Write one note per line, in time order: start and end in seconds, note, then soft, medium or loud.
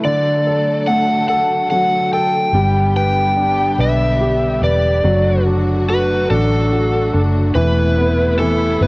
0.00 2.50 D3 medium
0.00 2.51 F#3 soft
0.00 2.51 A3 soft
0.00 2.50 A4 medium
0.04 2.51 D3 medium
0.04 0.90 D5 medium
0.47 1.28 A4 soft
0.88 2.51 A3 soft
0.88 1.28 F#5 medium
1.29 2.12 A4 soft
1.29 1.68 F#5 medium
1.71 2.52 F#3 soft
1.71 2.13 F#5 medium
2.13 2.54 A4 soft
2.13 2.95 G5 medium
2.52 3.75 G1 medium
2.52 7.51 D3 medium
2.52 5.02 G3 soft
2.52 5.01 G3 medium
2.52 5.02 B3 soft
2.52 5.02 G4 medium
2.96 3.77 B4 soft
2.96 3.82 G5 medium
3.37 5.01 D4 soft
3.78 4.59 B1 medium
3.78 4.61 B4 soft
3.78 4.63 E5 medium
4.21 5.02 G4 soft
4.61 5.02 E1 medium
4.61 5.04 B4 soft
4.61 5.43 D5 medium
5.04 6.26 F#1 medium
5.04 7.51 F#3 medium
5.04 7.53 F#3 medium
5.04 8.87 A3 soft
5.04 7.53 F#4 medium
5.47 6.29 D4 soft
5.89 6.71 F#4 soft
5.89 6.30 B4 medium
6.30 7.10 A1 medium
6.30 7.12 D4 soft
6.30 7.21 A4 medium
6.72 7.53 F#4 soft
7.14 7.53 F#1 medium
7.14 7.54 D4 soft
7.55 8.77 E1 medium
7.55 8.87 C3 medium
7.55 8.38 E3 medium
7.55 8.87 B3 medium
7.55 8.87 E4 medium
7.55 8.35 B4 medium
7.98 8.80 B3 soft
8.39 8.87 E3 soft
8.39 8.82 A4 medium
8.81 8.87 G1 medium
8.81 8.87 B3 soft
8.81 8.87 B4 medium